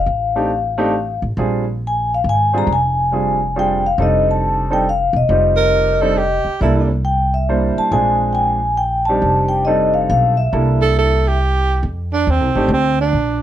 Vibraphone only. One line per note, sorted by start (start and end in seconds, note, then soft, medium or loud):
0.00 1.18 F5 medium
1.87 2.10 G#5 medium
2.15 2.28 F5 medium
2.29 2.56 G#5 loud
2.58 2.64 A#5 medium
2.73 3.53 G#5 loud
3.59 3.86 G5 medium
3.87 4.01 F5 medium
4.02 4.27 D#5 medium
4.31 4.74 A5 medium
4.73 4.88 G5 medium
4.89 5.17 F5 medium
5.17 6.42 D#5 medium
7.05 7.33 G5 medium
7.34 7.78 E5 medium
7.78 7.91 A5 medium
7.92 8.31 G#5 loud
8.33 8.36 G5 medium
8.33 8.80 G#5 loud
8.77 9.04 G5 medium
9.05 9.51 A5 medium
9.48 9.64 G5 medium
9.65 9.92 D#5 medium
9.94 10.08 F5 medium
10.10 10.36 F5 medium
10.37 11.36 E5 medium